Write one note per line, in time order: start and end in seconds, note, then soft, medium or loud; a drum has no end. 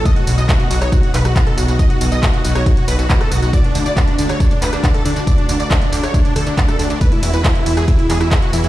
0.05 0.14 D#5 loud
0.05 kick loud
0.05 closed hi-hat medium
0.05 tambourine soft
0.16 0.24 F#4 medium
0.16 closed hi-hat medium
0.27 0.36 B1 medium
0.27 0.35 F#4 medium
0.27 open hi-hat loud
0.27 tambourine medium
0.38 0.47 B1 medium
0.38 0.46 D#5 loud
0.38 0.46 D#5 medium
0.38 closed hi-hat soft
0.38 tambourine soft
0.49 0.57 F#4 medium
0.49 kick loud
0.49 clap loud
0.49 closed hi-hat medium
0.49 tambourine soft
0.60 0.68 F#4 medium
0.60 closed hi-hat soft
0.70 0.80 B1 loud
0.70 0.79 F#4 medium
0.70 open hi-hat loud
0.70 tambourine medium
0.81 0.90 B1 medium
0.81 0.90 C#5 loud
0.81 cross-stick medium
0.81 closed hi-hat medium
0.81 tambourine soft
0.92 1.00 F#4 medium
0.92 1.01 F#4 medium
0.92 kick loud
0.92 closed hi-hat medium
0.92 tambourine soft
1.03 1.11 F#4 medium
1.03 closed hi-hat soft
1.14 1.23 B1 medium
1.14 1.22 B4 loud
1.14 1.22 B4 medium
1.14 clap medium
1.14 open hi-hat loud
1.14 tambourine medium
1.25 1.34 B1 medium
1.25 1.33 F#4 medium
1.25 cross-stick medium
1.25 closed hi-hat medium
1.25 tambourine soft
1.36 1.44 F#4 medium
1.36 kick loud
1.36 clap loud
1.36 closed hi-hat medium
1.36 tambourine soft
1.47 1.55 A4 medium
1.47 closed hi-hat medium
1.57 1.67 B1 loud
1.57 1.66 F#4 medium
1.57 open hi-hat loud
1.57 tambourine medium
1.68 1.77 B1 medium
1.68 1.77 F#4 medium
1.68 closed hi-hat soft
1.68 tambourine soft
1.79 1.87 D#5 loud
1.79 kick loud
1.79 closed hi-hat medium
1.79 tambourine soft
1.90 1.98 F#4 medium
1.90 closed hi-hat medium
2.01 2.10 B1 medium
2.01 2.09 F#4 medium
2.01 open hi-hat loud
2.01 tambourine medium
2.12 2.21 B1 medium
2.12 2.20 D#5 medium
2.12 2.20 D#5 loud
2.12 closed hi-hat medium
2.12 tambourine soft
2.23 2.31 F#4 medium
2.23 kick loud
2.23 clap loud
2.23 closed hi-hat medium
2.23 tambourine soft
2.33 2.42 F#4 medium
2.33 closed hi-hat medium
2.44 2.54 B1 loud
2.44 2.53 F#4 medium
2.44 open hi-hat loud
2.44 tambourine medium
2.55 2.64 B1 medium
2.55 2.63 C#5 loud
2.55 2.64 C#5 loud
2.55 cross-stick medium
2.55 closed hi-hat medium
2.55 tambourine soft
2.66 2.74 F#4 medium
2.66 kick loud
2.66 closed hi-hat medium
2.66 tambourine soft
2.77 2.85 F#4 medium
2.77 closed hi-hat soft
2.88 2.97 B1 medium
2.88 2.96 B4 loud
2.88 open hi-hat loud
2.88 tambourine medium
2.99 3.08 B1 medium
2.99 3.07 F#4 medium
2.99 closed hi-hat medium
2.99 tambourine soft
3.10 3.18 F#4 medium
3.10 kick loud
3.10 clap loud
3.10 closed hi-hat medium
3.10 tambourine soft
3.20 3.29 A4 medium
3.20 cross-stick medium
3.20 closed hi-hat medium
3.31 3.40 B1 loud
3.31 3.40 F#4 medium
3.31 open hi-hat loud
3.31 tambourine medium
3.42 3.51 B1 medium
3.42 3.51 F#4 medium
3.42 closed hi-hat medium
3.42 tambourine soft
3.53 3.61 D5 loud
3.53 kick loud
3.53 closed hi-hat medium
3.53 tambourine soft
3.64 3.72 D4 medium
3.64 closed hi-hat medium
3.75 3.84 D2 loud
3.75 3.83 D4 medium
3.75 open hi-hat loud
3.75 tambourine medium
3.86 3.95 D2 medium
3.86 3.94 D5 loud
3.86 3.94 D5 medium
3.86 closed hi-hat medium
3.86 tambourine soft
3.96 4.05 D4 medium
3.96 kick loud
3.96 clap loud
3.96 closed hi-hat medium
3.96 tambourine soft
4.07 4.16 D4 medium
4.07 closed hi-hat medium
4.18 4.27 D2 loud
4.18 4.27 D4 medium
4.18 open hi-hat loud
4.18 tambourine medium
4.29 4.38 D2 medium
4.29 4.37 C#5 loud
4.29 4.38 C#5 loud
4.29 cross-stick medium
4.29 closed hi-hat medium
4.29 tambourine soft
4.40 4.48 D4 medium
4.40 kick loud
4.40 closed hi-hat medium
4.40 tambourine soft
4.51 4.59 D4 medium
4.51 closed hi-hat medium
4.62 4.71 D2 loud
4.62 4.70 B4 loud
4.62 4.70 B4 medium
4.62 clap medium
4.62 open hi-hat loud
4.62 tambourine medium
4.73 4.82 D2 medium
4.73 4.81 D4 medium
4.73 cross-stick medium
4.73 closed hi-hat medium
4.73 tambourine soft
4.83 4.92 D4 medium
4.83 kick loud
4.83 clap loud
4.83 closed hi-hat medium
4.83 tambourine soft
4.94 5.03 A4 medium
4.94 closed hi-hat medium
5.05 5.14 D2 loud
5.05 5.14 D4 medium
5.05 open hi-hat loud
5.05 tambourine medium
5.16 5.25 D2 medium
5.16 5.24 D4 medium
5.16 5.25 D4 medium
5.16 closed hi-hat medium
5.16 tambourine soft
5.27 5.35 D5 medium
5.27 5.35 D5 loud
5.27 kick loud
5.27 closed hi-hat medium
5.27 tambourine soft
5.38 5.46 D4 medium
5.38 closed hi-hat medium
5.49 5.58 D2 medium
5.49 5.57 D4 medium
5.49 open hi-hat loud
5.49 tambourine medium
5.60 5.69 D2 medium
5.60 5.68 D5 loud
5.60 closed hi-hat medium
5.60 tambourine soft
5.70 5.79 D4 medium
5.70 kick loud
5.70 clap loud
5.70 closed hi-hat medium
5.70 tambourine soft
5.81 5.90 D4 medium
5.81 closed hi-hat medium
5.92 6.01 D2 loud
5.92 6.00 D4 medium
5.92 6.01 D4 medium
5.92 open hi-hat loud
5.92 tambourine medium
6.03 6.12 D2 medium
6.03 6.11 C#5 medium
6.03 6.11 C#5 loud
6.03 cross-stick medium
6.03 closed hi-hat medium
6.03 tambourine soft
6.14 6.22 D4 medium
6.14 kick loud
6.14 closed hi-hat medium
6.14 tambourine soft
6.25 6.33 D4 medium
6.25 closed hi-hat medium
6.36 6.45 D2 loud
6.36 6.44 A4 medium
6.36 6.44 A4 loud
6.36 cross-stick medium
6.36 open hi-hat loud
6.36 tambourine medium
6.46 6.56 D2 medium
6.46 6.55 D4 medium
6.46 closed hi-hat medium
6.46 tambourine soft
6.57 6.66 D4 medium
6.57 kick loud
6.57 clap loud
6.57 closed hi-hat medium
6.57 tambourine soft
6.68 6.77 A4 medium
6.68 6.77 A4 loud
6.68 cross-stick medium
6.68 closed hi-hat medium
6.68 tambourine soft
6.79 6.88 D2 loud
6.79 6.87 D4 medium
6.79 6.88 D4 medium
6.79 open hi-hat loud
6.79 tambourine medium
6.90 6.99 D2 medium
6.90 6.98 D4 medium
6.90 closed hi-hat medium
6.90 tambourine soft
7.01 7.09 B4 loud
7.01 7.09 B4 medium
7.01 kick loud
7.01 closed hi-hat medium
7.01 ride medium
7.01 tambourine soft
7.12 7.20 E4 medium
7.12 closed hi-hat medium
7.23 7.32 E2 loud
7.23 7.31 E4 medium
7.23 open hi-hat loud
7.23 ride medium
7.23 tambourine medium
7.33 7.43 E2 medium
7.33 7.42 B4 loud
7.33 7.42 B4 medium
7.33 closed hi-hat medium
7.33 tambourine soft
7.44 7.53 E4 medium
7.44 kick loud
7.44 clap loud
7.44 closed hi-hat medium
7.44 ride medium
7.44 tambourine soft
7.55 7.64 E4 medium
7.55 closed hi-hat medium
7.66 7.75 E2 medium
7.66 7.75 E4 medium
7.66 open hi-hat loud
7.66 ride medium
7.66 tambourine medium
7.77 7.86 E2 medium
7.77 7.85 G#4 loud
7.77 cross-stick medium
7.77 closed hi-hat medium
7.77 tambourine soft
7.88 7.96 E4 medium
7.88 kick loud
7.88 closed hi-hat medium
7.88 ride medium
7.88 tambourine soft
7.99 8.07 E4 medium
7.99 closed hi-hat medium
8.10 8.19 E2 medium
8.10 8.18 G#4 loud
8.10 8.18 G#4 medium
8.10 clap medium
8.10 open hi-hat loud
8.10 ride medium
8.10 tambourine medium
8.20 8.30 E2 medium
8.20 8.29 E4 medium
8.20 cross-stick medium
8.20 closed hi-hat medium
8.20 tambourine soft
8.31 8.40 E4 medium
8.31 kick loud
8.31 clap loud
8.31 closed hi-hat medium
8.31 ride medium
8.31 tambourine soft
8.42 8.51 F#4 medium
8.42 closed hi-hat medium
8.53 8.62 E2 loud
8.53 8.61 E4 medium
8.53 8.62 E4 medium
8.53 open hi-hat loud
8.53 ride medium
8.53 tambourine medium
8.64 8.69 E2 medium
8.64 8.69 E4 medium
8.64 closed hi-hat medium
8.64 tambourine soft